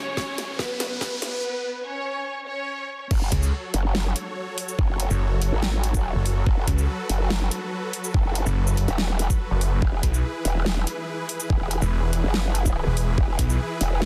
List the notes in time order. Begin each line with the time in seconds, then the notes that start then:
Already playing: F#2 C#3 F#3 C#4 C#5 G#5, riser
0.17 kick, snare
0.38 snare, closed hi-hat
0.59 B3 B4, kick, snare
0.80 snare, closed hi-hat
1.01 kick, snare
1.22 B3 B4, snare, open hi-hat
1.85 C#4 C#5
2.48 C#4 C#5
3.11 F#1 F#3 F#4 A4 C#5, kick, crash
3.32 C#2, kick, closed hi-hat
3.43 shaker
3.74 F#1, closed hi-hat
3.95 snare
4.16 closed hi-hat
4.58 open hi-hat
4.68 shaker
4.79 F#1, kick
4.89 F#1
5.00 closed hi-hat
5.10 F#1, shaker
5.42 closed hi-hat
5.52 G#1
5.63 snare
5.84 closed hi-hat
5.94 kick, shaker
6.15 F#1
6.26 open hi-hat
6.46 F#1 B4, kick
6.67 C#2, kick, closed hi-hat
6.78 shaker
7.09 F#1, closed hi-hat
7.30 snare
7.51 closed hi-hat
7.93 open hi-hat
8.04 shaker
8.14 F#1, kick
8.25 F#1
8.35 closed hi-hat
8.46 F#1, shaker
8.67 shaker
8.77 closed hi-hat
8.88 E1, closed hi-hat
8.98 snare
9.19 closed hi-hat
9.30 kick, shaker
9.51 F#1
9.61 open hi-hat
9.82 E1 E3 E4 G#4, kick
10.03 B1, kick, closed hi-hat
10.14 shaker
10.45 E1, closed hi-hat
10.66 snare
10.87 closed hi-hat
11.29 open hi-hat
11.40 shaker
11.50 E1, kick
11.61 E1
11.71 closed hi-hat
11.82 E1, shaker
12.13 closed hi-hat
12.24 F#1
12.34 snare
12.55 closed hi-hat
12.66 kick, shaker
12.87 E1
12.97 open hi-hat
13.18 E1, kick
13.39 B1, kick, closed hi-hat
13.50 shaker
13.81 E1, closed hi-hat
14.02 snare